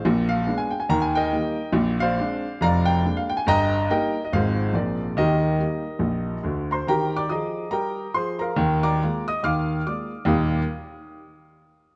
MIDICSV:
0, 0, Header, 1, 2, 480
1, 0, Start_track
1, 0, Key_signature, -3, "major"
1, 0, Tempo, 427350
1, 37, Time_signature, 4, 2, 24, 8
1, 13432, End_track
2, 0, Start_track
2, 0, Title_t, "Grand piano"
2, 0, Program_c, 0, 0
2, 56, Note_on_c, 0, 34, 80
2, 57, Note_on_c, 0, 46, 108
2, 262, Control_c, 0, 64, 127
2, 323, Note_on_c, 0, 77, 92
2, 456, Note_off_c, 0, 34, 0
2, 456, Note_off_c, 0, 46, 0
2, 523, Note_on_c, 0, 59, 47
2, 527, Note_on_c, 0, 56, 57
2, 533, Control_c, 0, 64, 0
2, 534, Note_on_c, 0, 62, 49
2, 647, Note_on_c, 0, 80, 74
2, 660, Note_off_c, 0, 77, 0
2, 785, Note_off_c, 0, 59, 0
2, 788, Note_off_c, 0, 56, 0
2, 792, Note_on_c, 0, 79, 70
2, 793, Note_off_c, 0, 62, 0
2, 795, Note_off_c, 0, 80, 0
2, 894, Note_off_c, 0, 79, 0
2, 896, Note_on_c, 0, 80, 67
2, 995, Note_off_c, 0, 80, 0
2, 1003, Note_on_c, 0, 39, 76
2, 1006, Note_on_c, 0, 51, 92
2, 1009, Note_on_c, 0, 82, 105
2, 1141, Note_on_c, 0, 80, 74
2, 1144, Note_off_c, 0, 82, 0
2, 1223, Control_c, 0, 64, 127
2, 1281, Note_off_c, 0, 80, 0
2, 1297, Note_on_c, 0, 79, 92
2, 1312, Note_on_c, 0, 70, 68
2, 1314, Note_on_c, 0, 75, 75
2, 1408, Note_off_c, 0, 39, 0
2, 1410, Note_off_c, 0, 51, 0
2, 1479, Note_on_c, 0, 58, 51
2, 1480, Note_on_c, 0, 55, 50
2, 1490, Note_on_c, 0, 63, 48
2, 1493, Control_c, 0, 64, 0
2, 1742, Note_off_c, 0, 58, 0
2, 1743, Note_off_c, 0, 55, 0
2, 1751, Note_off_c, 0, 63, 0
2, 1928, Note_off_c, 0, 70, 0
2, 1929, Note_off_c, 0, 75, 0
2, 1938, Note_on_c, 0, 34, 90
2, 1938, Note_on_c, 0, 46, 98
2, 1965, Note_off_c, 0, 79, 0
2, 2166, Control_c, 0, 64, 127
2, 2250, Note_on_c, 0, 77, 100
2, 2271, Note_on_c, 0, 72, 79
2, 2274, Note_on_c, 0, 74, 74
2, 2353, Note_off_c, 0, 34, 0
2, 2354, Note_off_c, 0, 46, 0
2, 2452, Control_c, 0, 64, 0
2, 2468, Note_on_c, 0, 56, 50
2, 2474, Note_on_c, 0, 60, 46
2, 2476, Note_on_c, 0, 62, 52
2, 2723, Note_off_c, 0, 56, 0
2, 2727, Note_off_c, 0, 60, 0
2, 2729, Note_off_c, 0, 62, 0
2, 2887, Note_off_c, 0, 72, 0
2, 2888, Note_off_c, 0, 74, 0
2, 2921, Note_off_c, 0, 77, 0
2, 2931, Note_on_c, 0, 41, 80
2, 2932, Note_on_c, 0, 29, 85
2, 2945, Note_on_c, 0, 82, 114
2, 2953, Note_on_c, 0, 74, 89
2, 2958, Note_on_c, 0, 77, 87
2, 3114, Control_c, 0, 64, 127
2, 3199, Note_off_c, 0, 74, 0
2, 3202, Note_off_c, 0, 77, 0
2, 3206, Note_on_c, 0, 79, 104
2, 3214, Note_off_c, 0, 82, 0
2, 3332, Note_off_c, 0, 41, 0
2, 3333, Note_off_c, 0, 29, 0
2, 3410, Control_c, 0, 64, 0
2, 3421, Note_on_c, 0, 56, 38
2, 3422, Note_on_c, 0, 58, 43
2, 3424, Note_on_c, 0, 62, 53
2, 3541, Note_off_c, 0, 79, 0
2, 3558, Note_on_c, 0, 77, 80
2, 3678, Note_off_c, 0, 56, 0
2, 3679, Note_off_c, 0, 58, 0
2, 3680, Note_off_c, 0, 62, 0
2, 3689, Note_off_c, 0, 77, 0
2, 3701, Note_on_c, 0, 79, 80
2, 3784, Note_on_c, 0, 80, 75
2, 3788, Note_off_c, 0, 79, 0
2, 3879, Note_off_c, 0, 80, 0
2, 3892, Note_on_c, 0, 43, 91
2, 3896, Note_on_c, 0, 31, 89
2, 3908, Note_on_c, 0, 82, 127
2, 3910, Note_on_c, 0, 79, 97
2, 3915, Note_on_c, 0, 75, 101
2, 4076, Control_c, 0, 64, 127
2, 4293, Note_off_c, 0, 43, 0
2, 4295, Note_off_c, 0, 31, 0
2, 4340, Note_off_c, 0, 79, 0
2, 4342, Note_off_c, 0, 75, 0
2, 4367, Control_c, 0, 64, 0
2, 4371, Note_off_c, 0, 82, 0
2, 4381, Note_on_c, 0, 58, 47
2, 4383, Note_on_c, 0, 55, 49
2, 4387, Note_on_c, 0, 63, 53
2, 4387, Note_on_c, 0, 79, 84
2, 4390, Note_on_c, 0, 75, 73
2, 4394, Note_on_c, 0, 70, 75
2, 4638, Note_off_c, 0, 58, 0
2, 4639, Note_off_c, 0, 55, 0
2, 4642, Note_off_c, 0, 63, 0
2, 4728, Note_off_c, 0, 75, 0
2, 4730, Note_off_c, 0, 70, 0
2, 4752, Note_off_c, 0, 79, 0
2, 4769, Note_on_c, 0, 75, 64
2, 4851, Note_off_c, 0, 75, 0
2, 4858, Note_on_c, 0, 32, 77
2, 4860, Note_on_c, 0, 53, 49
2, 4865, Note_on_c, 0, 44, 86
2, 4865, Note_on_c, 0, 77, 92
2, 4871, Note_on_c, 0, 60, 52
2, 4879, Note_on_c, 0, 65, 42
2, 4887, Note_on_c, 0, 68, 66
2, 4889, Note_on_c, 0, 72, 66
2, 5060, Control_c, 0, 64, 127
2, 5116, Note_off_c, 0, 53, 0
2, 5125, Note_off_c, 0, 60, 0
2, 5131, Note_off_c, 0, 65, 0
2, 5255, Note_off_c, 0, 32, 0
2, 5259, Note_off_c, 0, 44, 0
2, 5308, Note_off_c, 0, 68, 0
2, 5309, Note_off_c, 0, 72, 0
2, 5317, Note_on_c, 0, 34, 58
2, 5323, Control_c, 0, 64, 0
2, 5326, Note_on_c, 0, 56, 38
2, 5327, Note_on_c, 0, 60, 40
2, 5328, Note_on_c, 0, 46, 59
2, 5329, Note_off_c, 0, 77, 0
2, 5331, Note_on_c, 0, 74, 71
2, 5343, Note_on_c, 0, 68, 53
2, 5345, Note_on_c, 0, 65, 40
2, 5350, Note_on_c, 0, 70, 51
2, 5541, Control_c, 0, 64, 127
2, 5586, Note_off_c, 0, 56, 0
2, 5587, Note_off_c, 0, 60, 0
2, 5600, Note_off_c, 0, 65, 0
2, 5723, Note_off_c, 0, 34, 0
2, 5730, Note_off_c, 0, 46, 0
2, 5775, Note_off_c, 0, 68, 0
2, 5779, Note_off_c, 0, 70, 0
2, 5801, Note_off_c, 0, 74, 0
2, 5806, Note_on_c, 0, 39, 66
2, 5806, Note_on_c, 0, 51, 88
2, 5808, Control_c, 0, 64, 0
2, 5815, Note_on_c, 0, 75, 88
2, 5826, Note_on_c, 0, 70, 58
2, 5830, Note_on_c, 0, 67, 60
2, 6009, Control_c, 0, 64, 127
2, 6208, Note_off_c, 0, 39, 0
2, 6208, Note_off_c, 0, 51, 0
2, 6271, Note_on_c, 0, 55, 37
2, 6279, Note_on_c, 0, 58, 32
2, 6282, Note_on_c, 0, 63, 42
2, 6289, Control_c, 0, 64, 0
2, 6535, Note_off_c, 0, 55, 0
2, 6541, Note_off_c, 0, 58, 0
2, 6543, Note_off_c, 0, 63, 0
2, 6731, Note_on_c, 0, 34, 67
2, 6736, Note_on_c, 0, 46, 63
2, 7147, Note_off_c, 0, 34, 0
2, 7150, Note_off_c, 0, 46, 0
2, 7203, Note_off_c, 0, 70, 0
2, 7205, Note_off_c, 0, 67, 0
2, 7226, Note_on_c, 0, 50, 59
2, 7234, Note_on_c, 0, 38, 61
2, 7243, Note_off_c, 0, 75, 0
2, 7537, Note_on_c, 0, 82, 62
2, 7551, Note_on_c, 0, 84, 65
2, 7563, Note_off_c, 0, 82, 0
2, 7567, Note_on_c, 0, 72, 56
2, 7612, Note_off_c, 0, 50, 0
2, 7617, Note_off_c, 0, 38, 0
2, 7708, Note_off_c, 0, 72, 0
2, 7711, Note_off_c, 0, 84, 0
2, 7720, Note_on_c, 0, 51, 67
2, 7732, Note_on_c, 0, 82, 92
2, 7736, Note_on_c, 0, 79, 76
2, 7745, Note_on_c, 0, 67, 80
2, 7745, Note_on_c, 0, 70, 66
2, 7921, Control_c, 0, 64, 127
2, 8022, Note_off_c, 0, 79, 0
2, 8027, Note_off_c, 0, 70, 0
2, 8041, Note_off_c, 0, 82, 0
2, 8048, Note_on_c, 0, 86, 83
2, 8060, Note_on_c, 0, 74, 67
2, 8101, Note_off_c, 0, 51, 0
2, 8115, Note_off_c, 0, 67, 0
2, 8193, Note_on_c, 0, 87, 70
2, 8194, Note_on_c, 0, 53, 55
2, 8195, Note_off_c, 0, 74, 0
2, 8200, Note_off_c, 0, 86, 0
2, 8207, Control_c, 0, 64, 0
2, 8210, Note_on_c, 0, 68, 59
2, 8213, Note_on_c, 0, 75, 47
2, 8219, Note_on_c, 0, 82, 53
2, 8577, Note_off_c, 0, 53, 0
2, 8587, Note_off_c, 0, 68, 0
2, 8642, Note_off_c, 0, 82, 0
2, 8649, Note_off_c, 0, 75, 0
2, 8658, Note_on_c, 0, 55, 65
2, 8659, Note_on_c, 0, 82, 83
2, 8672, Note_off_c, 0, 87, 0
2, 8677, Note_on_c, 0, 70, 59
2, 8680, Note_on_c, 0, 79, 63
2, 9047, Note_off_c, 0, 55, 0
2, 9121, Note_off_c, 0, 70, 0
2, 9122, Note_off_c, 0, 79, 0
2, 9145, Note_off_c, 0, 82, 0
2, 9145, Note_on_c, 0, 53, 53
2, 9147, Note_on_c, 0, 84, 82
2, 9157, Note_on_c, 0, 68, 66
2, 9167, Note_on_c, 0, 72, 56
2, 9423, Note_off_c, 0, 72, 0
2, 9426, Note_on_c, 0, 82, 75
2, 9433, Note_off_c, 0, 84, 0
2, 9447, Note_on_c, 0, 70, 66
2, 9452, Note_on_c, 0, 77, 59
2, 9532, Note_off_c, 0, 53, 0
2, 9539, Note_off_c, 0, 68, 0
2, 9619, Note_on_c, 0, 51, 97
2, 9621, Note_on_c, 0, 39, 81
2, 9824, Control_c, 0, 64, 127
2, 9888, Note_off_c, 0, 70, 0
2, 9891, Note_off_c, 0, 77, 0
2, 9910, Note_off_c, 0, 82, 0
2, 9921, Note_on_c, 0, 86, 88
2, 9927, Note_on_c, 0, 82, 78
2, 9932, Note_on_c, 0, 74, 62
2, 10033, Note_off_c, 0, 51, 0
2, 10034, Note_off_c, 0, 39, 0
2, 10127, Control_c, 0, 64, 0
2, 10136, Note_on_c, 0, 58, 45
2, 10138, Note_on_c, 0, 56, 52
2, 10148, Note_on_c, 0, 65, 44
2, 10368, Note_off_c, 0, 82, 0
2, 10371, Note_off_c, 0, 74, 0
2, 10394, Note_off_c, 0, 58, 0
2, 10395, Note_off_c, 0, 56, 0
2, 10399, Note_off_c, 0, 86, 0
2, 10402, Note_off_c, 0, 65, 0
2, 10421, Note_on_c, 0, 87, 86
2, 10427, Note_on_c, 0, 75, 58
2, 10592, Note_on_c, 0, 51, 66
2, 10593, Note_on_c, 0, 39, 61
2, 10595, Note_off_c, 0, 75, 0
2, 10600, Note_on_c, 0, 89, 87
2, 10605, Note_off_c, 0, 87, 0
2, 10611, Note_on_c, 0, 77, 73
2, 10614, Note_on_c, 0, 86, 77
2, 11001, Note_off_c, 0, 39, 0
2, 11001, Note_off_c, 0, 51, 0
2, 11049, Note_off_c, 0, 77, 0
2, 11051, Note_off_c, 0, 86, 0
2, 11077, Note_off_c, 0, 89, 0
2, 11077, Note_on_c, 0, 56, 29
2, 11077, Note_on_c, 0, 65, 35
2, 11083, Note_on_c, 0, 86, 67
2, 11086, Note_on_c, 0, 58, 34
2, 11101, Note_on_c, 0, 74, 52
2, 11341, Note_off_c, 0, 56, 0
2, 11341, Note_off_c, 0, 65, 0
2, 11347, Note_off_c, 0, 58, 0
2, 11352, Note_off_c, 0, 74, 0
2, 11362, Note_off_c, 0, 86, 0
2, 11515, Note_on_c, 0, 39, 98
2, 11521, Note_on_c, 0, 58, 79
2, 11521, Note_on_c, 0, 63, 76
2, 11522, Note_on_c, 0, 46, 66
2, 11528, Note_on_c, 0, 55, 70
2, 11528, Note_on_c, 0, 67, 75
2, 11544, Note_on_c, 0, 87, 61
2, 11717, Control_c, 0, 64, 127
2, 11833, Note_off_c, 0, 39, 0
2, 11837, Note_off_c, 0, 46, 0
2, 11837, Note_off_c, 0, 58, 0
2, 11837, Note_off_c, 0, 63, 0
2, 11841, Note_off_c, 0, 55, 0
2, 11841, Note_off_c, 0, 67, 0
2, 11849, Note_off_c, 0, 87, 0
2, 11914, Control_c, 0, 64, 0
2, 13432, End_track
0, 0, End_of_file